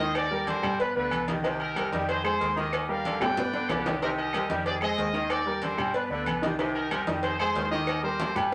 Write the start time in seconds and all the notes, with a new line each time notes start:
Already playing: D#2 G#4 C5 D#5
0.00 D#3 D#4 D#5
0.15 G4 A#4 D5, cowbell, high conga, low agogo, claves
0.31 G3 G4 A#4, high conga
0.47 D3 G4 C5, cowbell, high conga, low agogo
0.63 G2 G3 G4 G5, high conga, low conga, low agogo, claves
0.79 B3 D4 F4 B4 D5, cowbell, high conga
0.95 D2 D3 B3 D4 F4 B4 D5, high conga
1.11 C2, cowbell, high conga, low agogo, claves
1.28 D#3 G3 D#4 D#5, cowbell, high conga, low agogo
1.43 C3 D#3 D#4 D#5, cowbell, high conga, low agogo
1.60 D#4 G4 A#4, high conga, low agogo
1.76 C3 G3 G4 A#4, cowbell, high conga, low agogo, claves
1.92 F2 D#3 G3 D#4 D#5, cowbell, high conga
2.09 D#4 G#4 C5, cowbell, high conga, low agogo
2.24 G#3 D#4 G#4 C5, high conga, low agogo, claves
2.41 D#2 D#3 G#3 G#4 C5, cowbell, high conga
2.56 D#3 D#4 G4 A#4 D#5, high conga, low agogo
2.73 cowbell, high conga, low agogo, claves
2.89 G3 G4 A#4 D5 F5, high conga
3.05 D3, cowbell, high conga, low agogo
3.20 G2 G3 G4 B4 D5 G5, high bongo, high conga, low conga, high timbale, low agogo, claves
3.37 B3 B4 D5, cowbell, high bongo, high conga, low conga, high timbale
3.53 D3 B3 B4 D5, low bongo, high conga
3.69 C2 B3 D4 G4, cowbell, low bongo, high conga, low timbale, low agogo, claves
3.85 D#3 G3 D#4 D#5, cowbell, low bongo, high conga, low timbale, low agogo
4.02 C3 D#3 D#4 G4 A#4 D#5, cowbell, high conga, low agogo
4.18 G4 A#4 D#5, high conga, low agogo
4.33 C3 G3 G4 A#4, cowbell, high conga, low agogo, claves
4.49 F2 D#3 G3 D#4 D#5, cowbell, high conga
4.66 G#4 D5, cowbell, high conga, low agogo
4.81 G#3 G#4 C5 D#5, high conga, low agogo, claves
4.97 D#2 D#3 G#3 G#4 C5, cowbell, high conga
5.13 D#3 D#4 D#5, high conga, low agogo
5.30 G4 A#4 D5, cowbell, high conga, low agogo, claves
5.46 G3 G4 A#4, high conga
5.62 D3 G4 C5, cowbell, high conga, low agogo
5.77 G2 G3 G4 G5, high conga, low conga, low agogo, claves
5.94 B3 D4 F4 B4 D5, cowbell, high conga
6.09 D2 D3 B3 D4 F4 B4 D5, high conga
6.26 C2, cowbell, high conga, low agogo, claves
6.42 D#3 G3 D#4 D#5, cowbell, high conga, low agogo
6.58 C3 D#3 D#4 D#5, cowbell, high conga, low agogo
6.75 D#4 G4 A#4, high conga, low agogo
6.91 C3 G3 G4 A#4, cowbell, high conga, low agogo, claves
7.07 F2 D#3 G3 D#4 D#5, cowbell, high conga
7.23 D#4 G#4 C5, cowbell, high conga, low agogo
7.39 G#3 D#4 G#4 C5, high conga, low agogo, claves
7.55 D#2 D#3 G#3 G#4 C5, cowbell, high conga, low timbale
7.71 D#3 D#4 G4 A#4 D#5, high conga, low agogo
7.87 cowbell, high conga, low agogo, claves
8.03 G3 G4 A#4 C5, high conga
8.20 D3, cowbell, high bongo, high conga, low agogo
8.35 G2 G3 D4 F4 G4 B4 G5, high bongo, high conga, low conga, low agogo, claves